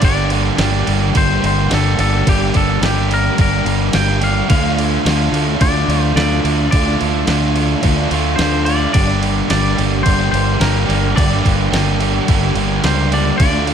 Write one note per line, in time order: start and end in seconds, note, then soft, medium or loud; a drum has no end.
0.00 0.49 G1 loud
0.00 1.14 G2 loud
0.00 0.59 D3 loud
0.00 0.33 G3 loud
0.00 2.96 D4 medium
0.00 kick loud
0.00 crash loud
0.04 0.32 A#3 medium
0.04 0.32 D4 loud
0.04 0.31 G4 loud
0.04 1.17 D5 loud
0.30 0.58 G3 medium
0.30 0.59 A#3 medium
0.30 0.60 D4 medium
0.30 0.60 G4 medium
0.30 crash medium
0.56 0.82 G1 loud
0.56 1.10 G2 medium
0.56 1.12 D3 medium
0.56 0.88 G3 medium
0.56 0.88 A#3 medium
0.56 snare loud
0.56 crash medium
0.60 0.87 D4 medium
0.60 0.86 G4 medium
0.86 1.10 G1 loud
0.86 1.14 G3 medium
0.86 1.15 A#3 medium
0.86 1.16 D4 medium
0.86 1.15 G4 medium
0.86 crash medium
1.14 1.38 G1 loud
1.14 1.70 G2 medium
1.14 1.70 D3 loud
1.14 1.43 G3 loud
1.14 1.42 A#3 loud
1.14 1.42 D4 loud
1.14 1.40 G4 loud
1.14 1.45 C5 loud
1.14 kick loud
1.14 crash medium
1.42 1.66 G1 medium
1.42 1.69 G3 medium
1.42 1.70 A#3 medium
1.42 1.71 D4 medium
1.42 1.71 G4 medium
1.42 crash medium
1.46 1.73 C5 loud
1.67 1.94 G1 medium
1.67 2.22 G2 medium
1.67 2.24 D3 medium
1.67 2.00 G3 medium
1.67 crash medium
1.71 1.99 A#3 medium
1.71 2.00 D4 medium
1.71 1.98 G4 loud
1.71 1.99 A4 loud
1.71 snare loud
1.98 2.22 G1 loud
1.98 2.27 G3 medium
1.98 2.26 A#3 medium
1.98 2.28 D4 medium
1.98 2.28 G4 medium
1.98 2.28 A4 loud
1.98 crash medium
2.26 2.50 G1 loud
2.26 2.82 G2 medium
2.26 2.82 D3 medium
2.26 2.56 G3 loud
2.26 2.54 A#3 medium
2.26 2.55 D4 loud
2.26 2.53 G4 loud
2.26 2.56 G4 loud
2.26 kick loud
2.26 crash loud
2.54 2.78 G1 medium
2.54 2.80 G3 medium
2.54 2.80 A#3 medium
2.54 2.82 D4 medium
2.54 2.82 G4 medium
2.54 2.84 A4 loud
2.54 kick medium
2.54 crash medium
2.80 3.28 G1 medium
2.80 3.34 G2 medium
2.80 3.36 D3 medium
2.80 3.11 G3 medium
2.80 3.10 A#3 medium
2.80 3.10 D4 medium
2.80 3.08 G4 medium
2.80 snare loud
2.80 crash medium
2.85 3.12 G4 medium
3.10 3.38 G3 medium
3.10 3.39 A#3 medium
3.10 3.41 D4 medium
3.10 3.40 G4 medium
3.10 3.40 A#4 loud
3.10 crash medium
3.35 3.62 G1 medium
3.35 3.89 G2 medium
3.35 kick loud
3.35 crash medium
3.39 3.94 G2 loud
3.39 3.94 D3 loud
3.39 3.67 G3 loud
3.39 3.66 A#3 loud
3.39 3.67 D4 loud
3.39 3.65 G4 loud
3.39 3.94 A#4 loud
3.65 3.88 G1 medium
3.65 3.93 G3 medium
3.65 3.93 A#3 medium
3.65 3.95 D4 medium
3.65 3.94 G4 medium
3.65 crash medium
3.91 4.40 G1 medium
3.91 4.46 G2 medium
3.91 4.46 D3 medium
3.91 4.22 G3 medium
3.91 4.21 A#3 medium
3.91 snare loud
3.91 crash loud
3.95 4.21 D4 medium
3.95 4.20 G4 medium
3.95 4.23 G5 loud
4.21 4.48 G3 medium
4.21 4.48 A#3 medium
4.21 4.49 D4 medium
4.21 4.47 G4 medium
4.21 4.48 F5 loud
4.21 snare soft
4.21 crash medium
4.48 4.96 D2 loud
4.48 5.05 D3 loud
4.48 4.79 A3 loud
4.48 4.78 D4 loud
4.48 4.77 F4 medium
4.48 5.61 F5 loud
4.48 kick loud
4.48 crash loud
4.77 5.06 A3 medium
4.77 5.07 D4 medium
4.77 5.07 F4 medium
4.77 crash medium
5.05 5.28 D2 loud
5.05 5.60 D3 medium
5.05 5.35 A3 medium
5.05 5.34 D4 medium
5.05 5.33 F4 loud
5.05 snare loud
5.05 crash loud
5.32 5.55 D2 loud
5.32 5.61 D4 medium
5.32 5.62 F4 medium
5.32 crash medium
5.36 5.60 A3 medium
5.60 5.84 D2 medium
5.60 6.14 D3 medium
5.60 5.90 A3 medium
5.60 5.90 D4 loud
5.60 5.88 F4 loud
5.60 6.02 D5 loud
5.60 kick loud
5.60 crash medium
5.88 6.11 D2 medium
5.88 6.15 A3 medium
5.88 6.17 D4 medium
5.88 6.17 F4 medium
5.88 crash medium
6.02 6.13 C5 loud
6.15 6.39 D2 loud
6.15 6.71 D3 medium
6.15 6.44 A3 loud
6.15 6.45 D4 loud
6.15 6.43 F4 medium
6.15 6.70 D5 loud
6.15 snare loud
6.15 crash medium
6.32 snare soft
6.44 6.67 D2 medium
6.44 6.72 A3 medium
6.44 6.73 D4 medium
6.44 6.74 F4 medium
6.44 crash medium
6.71 6.96 D2 loud
6.71 7.25 D3 loud
6.71 7.02 A3 loud
6.71 7.02 D4 loud
6.71 7.01 F4 medium
6.71 7.23 D5 medium
6.71 kick loud
6.71 crash medium
7.01 7.24 D2 medium
7.01 7.27 A3 medium
7.01 7.28 D4 medium
7.01 7.29 F4 medium
7.01 crash medium
7.27 7.74 D2 loud
7.27 7.80 D3 medium
7.27 7.56 A3 medium
7.27 7.56 D4 medium
7.27 7.55 F4 medium
7.27 snare loud
7.27 crash medium
7.55 7.81 A3 medium
7.55 7.82 D4 medium
7.55 7.83 F4 medium
7.55 crash medium
7.81 8.07 D2 medium
7.81 8.38 D3 loud
7.81 8.12 A3 loud
7.81 8.11 D4 loud
7.81 8.11 F4 loud
7.81 kick loud
7.81 crash medium
8.11 8.34 D2 medium
8.11 8.39 A3 medium
8.11 8.40 D4 medium
8.11 8.41 F4 medium
8.11 crash medium
8.36 8.85 D2 loud
8.36 8.92 D3 medium
8.36 8.65 C5 medium
8.36 snare loud
8.36 crash medium
8.40 8.69 A3 medium
8.40 8.68 D4 medium
8.40 8.67 F4 loud
8.65 8.95 D4 medium
8.65 8.95 F4 medium
8.65 8.92 D5 loud
8.65 crash medium
8.70 8.94 A3 medium
8.93 9.41 G1 loud
8.93 10.05 G2 loud
8.93 9.50 D3 medium
8.93 9.24 G3 loud
8.93 9.23 A#3 loud
8.93 9.23 D4 loud
8.93 9.22 G4 loud
8.93 9.49 D5 loud
8.93 kick loud
8.93 crash loud
9.22 9.49 G3 medium
9.22 9.50 A#3 medium
9.22 9.51 D4 medium
9.22 9.52 G4 medium
9.22 crash medium
9.49 9.73 G1 loud
9.49 10.02 G2 medium
9.49 10.03 D3 medium
9.49 9.80 G3 medium
9.49 9.79 A#3 medium
9.49 9.78 D4 loud
9.49 9.77 G4 medium
9.49 10.03 D5 medium
9.49 snare loud
9.49 crash loud
9.77 10.01 G1 loud
9.77 10.04 G3 medium
9.77 10.05 A#3 medium
9.77 10.06 D4 medium
9.77 10.06 G4 medium
9.77 crash medium
10.03 10.29 G1 medium
10.03 10.61 G2 loud
10.03 10.61 D3 loud
10.03 10.34 G3 loud
10.03 10.32 A#3 loud
10.03 10.33 D4 loud
10.03 10.31 G4 loud
10.03 10.30 C5 loud
10.03 kick loud
10.03 crash medium
10.31 10.56 G1 loud
10.31 10.58 G3 medium
10.31 10.60 A#3 medium
10.31 10.61 D4 medium
10.31 10.61 G4 medium
10.31 10.61 C5 medium
10.31 crash medium
10.59 10.84 G1 loud
10.59 11.14 G2 medium
10.59 11.16 D3 medium
10.59 10.87 G3 medium
10.59 10.87 A#3 medium
10.59 10.86 D4 medium
10.59 10.85 G4 loud
10.59 11.18 A#4 medium
10.59 snare loud
10.59 crash medium
10.86 11.12 G1 medium
10.86 11.14 G3 medium
10.86 11.15 A#3 medium
10.86 11.16 D4 medium
10.86 11.16 G4 medium
10.86 crash medium
10.90 snare soft
11.14 11.40 G1 loud
11.14 11.71 G2 medium
11.14 11.72 D3 loud
11.14 11.44 G3 loud
11.14 11.43 A#3 loud
11.14 11.43 D4 loud
11.14 11.41 G4 loud
11.14 12.85 D5 medium
11.14 kick loud
11.14 crash loud
11.42 11.68 G1 medium
11.42 11.69 G3 medium
11.42 11.70 A#3 medium
11.42 11.72 D4 medium
11.42 11.71 G4 medium
11.42 kick medium
11.42 crash medium
11.70 12.19 G1 loud
11.70 12.24 G2 medium
11.70 12.26 D3 medium
11.70 12.01 G3 medium
11.70 12.00 A#3 medium
11.70 12.00 D4 medium
11.70 11.99 G4 medium
11.70 snare loud
11.70 crash medium
12.00 12.27 G3 medium
12.00 12.28 A#3 medium
12.00 12.29 D4 medium
12.00 12.29 G4 medium
12.00 crash medium
12.28 12.52 G1 medium
12.28 12.84 G2 medium
12.28 12.84 D3 loud
12.28 12.56 G3 medium
12.28 12.56 A#3 loud
12.28 12.56 D4 loud
12.28 12.54 G4 loud
12.28 kick loud
12.28 crash medium
12.55 12.79 G1 medium
12.55 12.83 G3 medium
12.55 12.83 A#3 medium
12.55 12.84 D4 medium
12.55 12.85 G4 medium
12.55 crash medium
12.82 13.30 C#2 medium
12.82 13.37 G2 medium
12.82 13.36 D3 medium
12.82 13.13 G3 medium
12.82 13.13 A#3 medium
12.82 13.12 D4 medium
12.82 13.13 C5 medium
12.82 snare loud
12.82 crash medium
12.86 13.11 G4 medium
13.12 13.38 G3 medium
13.12 13.39 A#3 medium
13.12 13.40 D4 medium
13.12 13.38 G4 medium
13.12 13.37 D5 medium
13.12 snare soft
13.12 crash medium
13.38 13.74 D2 loud
13.38 13.74 D3 loud
13.38 13.69 A3 loud
13.38 13.68 D4 loud
13.38 13.67 F4 loud
13.38 13.74 D5 loud
13.38 kick loud
13.38 crash medium
13.67 13.74 A3 medium
13.67 13.74 D4 medium
13.67 13.74 F4 medium
13.67 crash medium